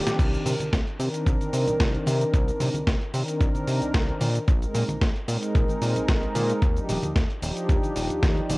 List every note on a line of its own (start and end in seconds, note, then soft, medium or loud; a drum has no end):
0.00 0.30 D#3 medium
0.00 0.30 C4 medium
0.00 0.30 D4 medium
0.00 0.17 F4 medium
0.00 0.17 G4 medium
0.00 0.31 G4 loud
0.00 0.17 D5 medium
0.07 snare medium
0.07 closed hi-hat soft
0.07 low conga medium
0.07 cabasa soft
0.19 0.37 C2 loud
0.19 kick loud
0.19 closed hi-hat soft
0.19 crash medium
0.19 cabasa soft
0.33 0.51 D#3 medium
0.33 0.51 C4 medium
0.33 0.51 D4 medium
0.33 0.51 A#4 medium
0.33 closed hi-hat soft
0.33 cabasa soft
0.46 0.55 C3 medium
0.46 open hi-hat loud
0.46 low conga medium
0.46 cabasa medium
0.60 0.70 C2 soft
0.60 closed hi-hat medium
0.60 high conga medium
0.60 cabasa soft
0.73 0.82 C2 medium
0.73 kick loud
0.73 snare loud
0.73 closed hi-hat medium
0.73 cabasa soft
0.87 closed hi-hat soft
0.99 1.09 C3 medium
0.99 2.44 D#3 medium
0.99 2.44 C4 medium
0.99 2.45 D4 medium
0.99 2.45 A#4 medium
0.99 open hi-hat medium
0.99 cabasa medium
1.14 closed hi-hat medium
1.14 cabasa soft
1.26 1.36 C2 loud
1.26 kick loud
1.26 closed hi-hat soft
1.26 cabasa soft
1.41 closed hi-hat soft
1.41 high conga medium
1.41 cabasa soft
1.53 1.67 C3 medium
1.53 open hi-hat loud
1.53 cabasa medium
1.67 1.77 C2 soft
1.67 closed hi-hat medium
1.67 low conga medium
1.67 cabasa soft
1.80 1.98 C2 medium
1.80 kick loud
1.80 snare loud
1.80 closed hi-hat medium
1.80 cabasa soft
1.94 closed hi-hat soft
2.06 2.25 C3 loud
2.06 open hi-hat loud
2.06 high conga medium
2.06 cabasa medium
2.21 closed hi-hat medium
2.21 cabasa soft
2.33 2.51 C2 loud
2.33 kick loud
2.33 closed hi-hat medium
2.33 cabasa soft
2.47 2.65 D#3 medium
2.47 2.65 C4 medium
2.47 2.65 D4 medium
2.47 2.65 A#4 loud
2.47 closed hi-hat soft
2.47 cabasa soft
2.60 2.69 C3 medium
2.60 open hi-hat loud
2.60 low conga medium
2.60 cabasa medium
2.74 2.85 C2 soft
2.74 closed hi-hat soft
2.74 high conga loud
2.74 cabasa soft
2.87 2.96 C2 medium
2.87 kick loud
2.87 snare loud
2.87 closed hi-hat soft
2.87 cabasa soft
3.02 closed hi-hat soft
3.13 3.23 C3 medium
3.13 4.19 D#3 medium
3.13 4.19 C4 medium
3.13 4.20 D4 medium
3.13 4.20 A#4 medium
3.13 open hi-hat loud
3.13 cabasa medium
3.28 closed hi-hat medium
3.28 cabasa soft
3.41 3.50 C2 loud
3.41 kick loud
3.41 closed hi-hat soft
3.41 cabasa soft
3.55 closed hi-hat soft
3.55 high conga medium
3.55 cabasa soft
3.67 3.81 C3 medium
3.67 open hi-hat loud
3.67 cabasa medium
3.82 3.92 C2 soft
3.82 closed hi-hat soft
3.82 cabasa soft
3.94 4.12 C2 medium
3.94 kick loud
3.94 snare loud
3.94 closed hi-hat medium
3.94 cabasa soft
4.09 closed hi-hat soft
4.21 4.39 A#2 loud
4.21 open hi-hat loud
4.21 high conga medium
4.21 cabasa medium
4.35 closed hi-hat medium
4.35 cabasa soft
4.48 4.66 A#1 loud
4.48 kick loud
4.48 closed hi-hat soft
4.48 cabasa soft
4.62 4.79 G#3 medium
4.62 4.79 C4 medium
4.62 4.80 D#4 medium
4.62 4.80 A#4 loud
4.62 closed hi-hat soft
4.62 cabasa soft
4.74 4.84 A#2 medium
4.74 open hi-hat loud
4.74 low conga medium
4.74 cabasa medium
4.89 4.99 A#1 soft
4.89 closed hi-hat soft
4.89 high conga loud
4.89 cabasa soft
5.01 5.11 A#1 medium
5.01 kick loud
5.01 snare loud
5.01 closed hi-hat soft
5.01 cabasa soft
5.16 closed hi-hat soft
5.27 5.37 A#2 medium
5.27 6.60 G#3 medium
5.27 6.60 C4 medium
5.27 6.61 D#4 medium
5.27 6.61 A#4 medium
5.27 open hi-hat loud
5.27 cabasa medium
5.43 closed hi-hat soft
5.43 cabasa soft
5.55 5.64 A#1 loud
5.55 kick loud
5.55 closed hi-hat soft
5.55 cabasa soft
5.68 closed hi-hat soft
5.68 high conga medium
5.68 cabasa soft
5.81 5.95 A#2 medium
5.81 open hi-hat loud
5.81 cabasa medium
5.96 6.06 A#1 soft
5.96 closed hi-hat soft
5.96 low conga medium
5.96 cabasa soft
6.08 6.26 A#1 medium
6.08 kick loud
6.08 snare loud
6.08 closed hi-hat soft
6.08 cabasa soft
6.23 closed hi-hat soft
6.35 6.53 A#2 loud
6.35 open hi-hat loud
6.35 high conga medium
6.35 cabasa medium
6.50 closed hi-hat soft
6.50 cabasa soft
6.62 6.80 D#2 loud
6.62 kick loud
6.62 closed hi-hat soft
6.62 cabasa soft
6.76 6.93 F3 medium
6.76 6.94 D4 medium
6.76 6.94 D#4 medium
6.76 6.94 G4 medium
6.76 closed hi-hat soft
6.76 cabasa soft
6.89 6.98 D#1 medium
6.89 open hi-hat loud
6.89 low conga medium
6.89 cabasa medium
7.03 7.13 D#2 soft
7.03 closed hi-hat soft
7.03 high conga loud
7.03 cabasa soft
7.16 7.25 D#2 medium
7.16 kick loud
7.16 snare loud
7.16 closed hi-hat soft
7.16 cabasa soft
7.30 closed hi-hat soft
7.41 7.52 D#1 medium
7.41 8.58 F3 medium
7.41 8.58 D4 medium
7.41 8.58 D#4 medium
7.41 8.58 G4 medium
7.41 open hi-hat loud
7.41 cabasa medium
7.57 closed hi-hat soft
7.57 cabasa soft
7.69 7.78 D#2 medium
7.69 kick loud
7.69 closed hi-hat soft
7.69 cabasa soft
7.83 closed hi-hat soft
7.83 high conga medium
7.83 cabasa soft
7.96 8.10 D#1 medium
7.96 open hi-hat loud
7.96 cabasa medium
8.10 8.20 D#2 soft
8.10 closed hi-hat soft
8.10 cabasa soft
8.23 8.41 D#2 medium
8.23 kick loud
8.23 snare loud
8.23 closed hi-hat soft
8.23 cabasa soft
8.37 closed hi-hat soft
8.49 8.58 D#1 loud
8.49 open hi-hat loud
8.49 high conga loud
8.49 cabasa medium